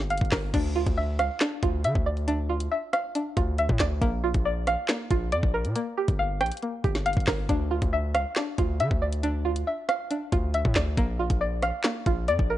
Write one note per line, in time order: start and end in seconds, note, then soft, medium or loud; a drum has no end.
0.00 0.20 G1 loud
0.00 0.54 A#3 medium
0.00 0.54 G4 medium
0.00 0.54 G5 loud
0.10 0.54 F5 loud
0.10 closed hi-hat medium
0.18 0.32 G1 loud
0.18 kick loud
0.18 closed hi-hat medium
0.25 closed hi-hat soft
0.32 0.53 G1 loud
0.32 0.54 A#4 medium
0.32 kick medium
0.32 cross-stick loud
0.32 snare loud
0.32 clap loud
0.32 open hi-hat medium
0.54 0.85 D2 loud
0.54 1.40 D4 medium
0.54 kick loud
0.54 closed hi-hat loud
0.54 crash loud
0.76 1.61 F4 medium
0.87 1.21 D2 loud
0.87 kick loud
0.87 closed hi-hat medium
0.98 1.83 E5 medium
1.19 1.29 C#2 loud
1.19 2.50 F5 loud
1.19 cross-stick loud
1.19 closed hi-hat medium
1.40 2.27 D4 medium
1.40 snare loud
1.40 clap medium
1.40 closed hi-hat medium
1.63 1.86 D2 loud
1.63 2.48 F4 medium
1.63 kick loud
1.63 closed hi-hat medium
1.84 1.95 D3 loud
1.84 2.70 E5 loud
1.84 closed hi-hat medium
1.95 2.68 D2 loud
1.95 kick loud
2.06 3.37 D5 medium
2.17 closed hi-hat medium
2.28 3.14 D4 medium
2.28 closed hi-hat loud
2.49 3.35 F4 medium
2.60 closed hi-hat medium
2.72 3.57 E5 medium
2.93 4.02 F5 loud
2.93 cross-stick loud
2.93 closed hi-hat medium
3.15 4.02 D4 medium
3.15 closed hi-hat medium
3.36 3.68 D2 loud
3.36 4.02 F4 medium
3.36 kick loud
3.36 closed hi-hat medium
3.58 4.02 E5 loud
3.58 closed hi-hat medium
3.69 3.80 A2 loud
3.69 kick loud
3.79 4.01 D2 loud
3.79 4.02 D5 medium
3.79 kick loud
3.79 snare loud
3.79 clap loud
3.79 closed hi-hat medium
4.02 4.33 A#1 loud
4.02 4.88 A#3 loud
4.02 kick loud
4.02 closed hi-hat medium
4.24 5.09 F4 medium
4.34 4.76 A#1 loud
4.34 kick loud
4.34 closed hi-hat medium
4.45 5.31 D5 medium
4.67 5.76 F5 loud
4.67 cross-stick loud
4.67 closed hi-hat medium
4.88 5.75 A#3 medium
4.88 snare loud
4.88 clap medium
4.88 closed hi-hat medium
5.10 5.34 A#1 loud
5.10 5.76 F4 medium
5.10 kick loud
5.10 closed hi-hat medium
5.32 5.43 F2 loud
5.32 5.76 D5 loud
5.32 closed hi-hat medium
5.43 5.66 A#1 loud
5.43 kick loud
5.54 5.76 A#4 medium
5.65 5.75 A#2 loud
5.65 closed hi-hat medium
5.76 6.61 A#3 medium
5.76 closed hi-hat medium
5.98 6.83 G4 medium
6.08 6.42 G1 loud
6.08 kick loud
6.08 closed hi-hat medium
6.19 7.05 F5 medium
6.41 6.51 A#1 loud
6.41 7.50 G5 loud
6.41 cross-stick loud
6.41 closed hi-hat soft
6.46 closed hi-hat medium
6.52 closed hi-hat medium
6.57 closed hi-hat medium
6.63 7.50 A#3 medium
6.63 closed hi-hat medium
6.84 7.16 G1 loud
6.84 7.50 G4 medium
6.84 kick loud
6.84 closed hi-hat medium
6.95 snare medium
7.06 7.50 F5 loud
7.06 closed hi-hat medium
7.13 7.27 G1 loud
7.13 kick loud
7.13 closed hi-hat medium
7.21 closed hi-hat soft
7.27 7.49 G1 loud
7.27 7.50 A#4 medium
7.27 kick loud
7.27 cross-stick loud
7.27 snare loud
7.27 clap loud
7.27 open hi-hat medium
7.49 7.81 D2 loud
7.49 8.35 D4 medium
7.49 kick loud
7.49 closed hi-hat loud
7.71 8.57 F4 medium
7.82 8.16 D2 loud
7.82 kick loud
7.82 closed hi-hat medium
7.93 8.79 E5 medium
8.15 8.25 C#2 loud
8.15 9.45 F5 loud
8.15 cross-stick loud
8.15 closed hi-hat medium
8.36 9.22 D4 medium
8.36 snare loud
8.36 clap loud
8.36 closed hi-hat medium
8.58 8.82 D2 loud
8.58 9.44 F4 medium
8.58 kick loud
8.58 closed hi-hat medium
8.80 8.90 D3 loud
8.80 9.66 E5 loud
8.80 closed hi-hat medium
8.91 9.64 D2 loud
8.91 kick loud
9.02 10.32 D5 medium
9.13 closed hi-hat medium
9.23 10.09 D4 medium
9.23 closed hi-hat loud
9.45 10.31 F4 medium
9.56 closed hi-hat medium
9.67 10.53 E5 medium
9.88 10.97 F5 loud
9.88 cross-stick loud
9.88 closed hi-hat medium
10.10 10.97 D4 medium
10.10 closed hi-hat medium
10.32 10.63 D2 loud
10.32 10.97 F4 medium
10.32 kick loud
10.32 closed hi-hat medium
10.54 10.97 E5 loud
10.54 closed hi-hat medium
10.65 10.75 A2 loud
10.65 kick loud
10.75 10.97 D2 loud
10.75 10.97 D5 medium
10.75 kick loud
10.75 snare loud
10.75 clap loud
10.75 closed hi-hat medium
10.97 11.29 A#1 loud
10.97 11.83 A#3 loud
10.97 kick loud
10.97 closed hi-hat loud
11.19 12.05 F4 medium
11.30 11.72 A#1 loud
11.30 kick medium
11.30 closed hi-hat medium
11.41 12.27 D5 medium
11.63 12.58 F5 loud
11.63 cross-stick loud
11.63 closed hi-hat medium
11.84 12.58 A#3 medium
11.84 snare loud
11.84 clap medium
11.84 closed hi-hat medium
12.06 12.29 A#1 loud
12.06 12.58 F4 medium
12.06 kick loud
12.06 closed hi-hat medium
12.28 12.38 F2 loud
12.28 12.58 D5 loud
12.28 closed hi-hat medium
12.39 12.58 A#1 loud
12.39 kick loud
12.50 12.58 A#4 medium